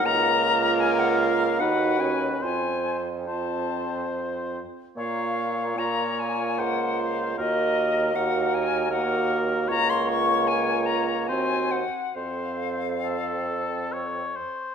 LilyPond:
<<
  \new Staff \with { instrumentName = "Flute" } { \time 3/4 \key bes \minor \tempo 4 = 74 bes''4 aes''16 ges''16 f''8 fis''8 aes''8 | aes''8. r16 a''4 r4 | f''4 bes''8 aes''8 ges''8 f''8 | ees''4 ges''8 aes''8 ges''4 |
bes''16 c'''16 des'''8 aes''8 bes''8 aes''8 ges''8 | f''2 r4 | }
  \new Staff \with { instrumentName = "Oboe" } { \time 3/4 \key bes \minor bes'2 b'4 | c''4 c''4. r8 | des''4 des''4 c''4 | bes'4 bes'4 bes'4 |
des''2 c''8 r8 | c''4 a'4 des''8 c''8 | }
  \new Staff \with { instrumentName = "Clarinet" } { \time 3/4 \key bes \minor f'2 fis'4 | f'4 f'4. r8 | f'4 f'2 | ges'4 ges'4 ges'4 |
f'2 ges'8 r8 | a'2~ a'8 r8 | }
  \new Staff \with { instrumentName = "French horn" } { \time 3/4 \key bes \minor bes2 dis'8 des'8 | c'4 c'4. r8 | bes4 bes2 | bes4 bes4 bes4 |
bes2 c'8 r8 | c'2~ c'8 r8 | }
  \new Staff \with { instrumentName = "Bassoon" } { \clef bass \time 3/4 \key bes \minor des,2 dis,4 | f,2~ f,8 r8 | bes,2 des,4 | ees,2. |
des,2 ees,8 r8 | f,2~ f,8 r8 | }
>>